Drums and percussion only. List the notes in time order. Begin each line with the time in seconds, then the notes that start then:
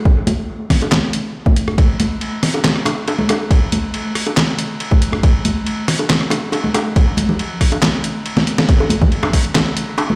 0.05 kick
0.27 closed hi-hat, high conga
0.70 kick, cross-stick, snare, open hi-hat
0.82 closed hi-hat, high bongo
0.92 snare, clap, high conga
1.13 closed hi-hat
1.46 kick, high conga
1.56 closed hi-hat
1.68 cross-stick, high bongo
1.78 kick, ride
2.00 closed hi-hat, high conga
2.21 ride
2.43 cross-stick, snare, open hi-hat
2.54 closed hi-hat, high bongo
2.64 snare, clap, ride, high conga
2.76 cross-stick
2.85 cross-stick, closed hi-hat, high bongo
3.08 ride, high bongo
3.19 high conga
3.29 cross-stick, closed hi-hat, high bongo
3.51 kick, ride
3.72 closed hi-hat, high conga
3.94 ride
4.15 cross-stick, open hi-hat
4.27 closed hi-hat, high bongo
4.37 snare, clap, ride, high conga
4.59 closed hi-hat
4.80 ride
4.91 kick, high conga
5.02 closed hi-hat
5.12 cross-stick, high bongo
5.23 kick, ride
5.45 closed hi-hat, high conga
5.66 ride
5.88 cross-stick, snare, open hi-hat
5.99 closed hi-hat, high bongo
6.10 snare, clap, ride, high conga
6.21 cross-stick
6.30 cross-stick, closed hi-hat, high bongo
6.52 ride, high bongo
6.64 high conga
6.74 cross-stick, closed hi-hat, high bongo
6.96 kick, ride
7.17 closed hi-hat, high conga
7.29 low conga
7.39 ride
7.61 kick, cross-stick, open hi-hat
7.72 closed hi-hat, high bongo
7.82 snare, clap, ride, high conga
8.04 closed hi-hat
8.26 ride
8.37 snare, high conga
8.47 closed hi-hat
8.58 snare, high bongo
8.69 kick, ride
8.80 high bongo
8.90 closed hi-hat, high conga
9.02 kick, low conga
9.12 ride
9.23 cross-stick, high bongo
9.33 kick, open hi-hat
9.45 closed hi-hat
9.55 snare, clap, ride, high bongo, high conga
9.77 closed hi-hat
9.98 ride, high bongo
10.10 high conga